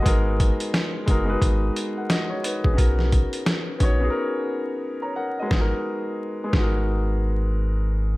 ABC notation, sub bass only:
X:1
M:4/4
L:1/16
Q:"Swing 16ths" 1/4=88
K:G#m
V:1 name="Sub bass" clef=bass
G,,,3 z3 F,,,2 G,,,2 z4 z A,,, | B,,,3 z3 A,,,2 z8 | G,,, z4 z G,,,8- G,,,2 |]